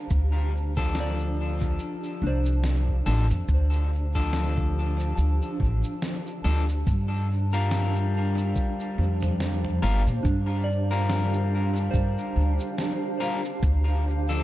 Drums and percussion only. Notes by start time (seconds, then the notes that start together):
0.10 kick, cabasa
0.77 kick, cabasa
0.95 snare, cabasa
1.19 cabasa
1.61 kick, cabasa
1.79 cabasa
2.04 cabasa
2.46 cabasa
2.64 snare, cabasa
2.88 kick
3.30 cabasa
3.48 kick, cabasa
3.73 cabasa
4.15 kick, cabasa
4.33 snare, cabasa
4.57 kick, cabasa
5.00 cabasa
5.18 cabasa
5.42 cabasa
5.60 kick
5.84 cabasa
6.02 snare, cabasa
6.27 cabasa
6.69 cabasa
6.87 kick, cabasa
7.53 cabasa
7.71 snare, cabasa
7.96 cabasa
8.38 cabasa
8.56 kick, cabasa
8.80 cabasa
9.22 mid tom, cabasa
9.40 snare, cabasa
9.65 mid tom
10.07 cabasa
10.25 kick, cabasa
10.91 cabasa
11.10 snare, cabasa
11.34 cabasa
11.76 cabasa
11.94 kick, cabasa
12.18 cabasa
12.60 cabasa
12.78 snare, cabasa
13.45 cabasa
13.63 kick, cabasa
14.29 cabasa